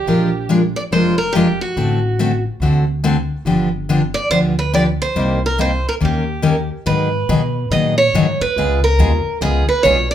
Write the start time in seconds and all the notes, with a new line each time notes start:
Already playing: G4
0.06 A#1 F3 G#3 D4 F4 A#4
0.49 F3 G#3 D4 F4 A#4
0.76 D5
0.91 F1 F3 G#3 D4 F4 A#4 C5
1.18 A#4
1.33 F3 G#3 D4 F4 G4 A#4
1.61 F#4
1.76 A1 D3 A3 C4 F#4 A4
2.19 D3 A3 C4 F#4 A4
2.60 D2 D3 A3 C4 F#4 A4
3.04 D3 A3 C4 F#4 A4
3.45 G1 D3 F3 B3 D4 G4
3.89 D3 F3 B3 D4 G4
4.14 D5
4.30 D2 D3 F3 B3 D4 G4 C5
4.59 B4
4.73 D3 F3 B3 D4 G4 D5
5.02 C5
5.15 C2 C3 G3 A#3 D#4 G4
5.46 A#4
5.58 C3 G3 A#3 D#4 G4 C5
5.89 A#4
6.00 D#2 D#3 A#3 C#4 G4 A#4
6.05 G4
6.42 D#3 A#3 C#4 G4 A#4
6.86 G#2 D#3 F#3 B3 D#4 G#4 B4
7.29 B2 D#3 F#3 B3 D#4 G#4
7.70 A#2 D#3 F#3 B3 D#4 G#4 D#5
7.98 C#5
8.14 G#2 D#3 F#3 B3 D#4 G#4
8.41 B4, muted upright bass stroke
8.56 C#2 C#3 G#3 B3 F4 G#4
8.84 A#4
8.98 D#2 C#3 G#3 B3 F4 G#4
9.26 muted upright bass stroke
9.41 C#2 C#3 G#3 B3 F4 G#4
9.69 B4, muted upright bass stroke
9.83 B1 C#3 G#3 B3 F4 G#4 C#5
10.11 D5